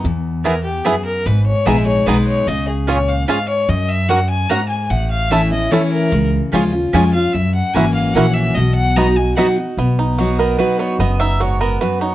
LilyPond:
<<
  \new Staff \with { instrumentName = "Fiddle" } { \time 3/4 \key b \major \tempo 4 = 148 r4 ais'8 g'8 gis'8 ais'8 | b'8 cis''8 e''8 cis''8 b'8 cis''8 | dis''8 gis'8 cis''8 eis''8 eis''8 cis''8 | dis''8 e''8 fis''8 gis''8 ais''8 gis''8 |
fis''8 eis''8 e''8 dis''8 cis''8 ais'8~ | ais'8 r4. gis''8 eis''8 | e''8 fis''8 gis''8 eis''8 fis''8 e''8 | dis''8 fis''8 ais''8 gis''8 fis''8 r8 |
r2. | r2. | }
  \new Staff \with { instrumentName = "Mandolin" } { \time 3/4 \key b \major r4 <b e' b' gis''>8 r8 <b e' b' gis''>8 r8 | r4 <b gis' dis'' gis''>8 r8 <b gis' dis'' gis''>8 r8 | r4 <cis' eis' cis'' gis''>8 r8 <cis' eis' cis'' gis''>8 r8 | r4 <ais fis' cis'' fis''>8 r8 <ais fis' cis'' fis''>8 r8 |
r4 <a e' cis'' a''>8 r8 <a e' cis'' a''>8 r8 | r4 <cis' eis' cis'' gis''>8 r8 <cis' eis' cis'' gis''>8 r8 | r4 <ais e' cis'' fis''>8 r8 <ais e' cis'' fis''>8 r8 | r4 <b fis' dis'' b''>8 r8 <b fis' dis'' b''>8 r8 |
r4 cis''8 ais'8 b'8 cis''8 | dis''8 e''8 cis''8 ais'8 b'8 cis''8 | }
  \new Staff \with { instrumentName = "Five-string banjo" } { \time 3/4 \key b \major r4 <b e' gis'>8 r8 <b e' gis'>8 r8 | r4 <b dis' gis'>8 r8 <b dis' gis'>8 r8 | r4 <cis' eis' gis'>8 r8 <cis' eis' gis'>8 r8 | r4 <cis' fis'>8 r8 <cis' fis'>8 r8 |
r4 <cis' e' a'>8 r8 <cis' e' a'>8 r8 | r4 <cis' eis' gis'>8 r8 <cis' eis' gis'>8 r8 | r4 <cis' e' fis'>8 r8 <cis' e' fis'>8 r8 | r4 <b dis' fis'>8 r8 <b dis' fis'>8 r8 |
b8 dis'8 fis'8 b8 fis'8 b8 | b8 dis'8 fis'8 b8 fis'8 dis'8 | }
  \new Staff \with { instrumentName = "Steel-string acoustic guitar" } { \time 3/4 \key b \major << { r2. | r4 <gis b dis' gis'>8 <dis' gis'>8 <gis b dis' gis'>4 | r2. | r2. |
r4 <e a cis' e'>8 <cis' e'>8 <e a cis' e'>4 | r4 <eis gis cis' eis'>8 <cis' eis'>8 <eis gis cis' eis'>8 <cis' eis'>8 | r4 <e ais cis' fis'>4 <e ais cis' fis'>4 | r4 <fis b dis' fis'>8 <dis' fis'>8 <fis b dis' fis'>8 <dis' fis'>8 |
r4 <fis b dis' fis'>4 <fis b dis' fis'>4 | r2. | } \\ { e,4 e,4 fis,4 | gis,2 r4 | cis4 ais,4 gis,4 | fis,4 fis,4 gis,4 |
a,2 r4 | cis2 r4 | fis,2 r4 | b,2 r4 |
b,2 r4 | fis,4 gis,4 fis,4 | } >> }
  \new Staff \with { instrumentName = "Upright bass" } { \clef bass \time 3/4 \key b \major e,2. | gis,,4 ais,,4 b,,4 | cis,2. | fis,2. |
a,,2. | cis,4 dis,4 eis,4 | fis,4 gis,,4 ais,,4 | b,,2. |
b,,2. | fis,,2. | }
>>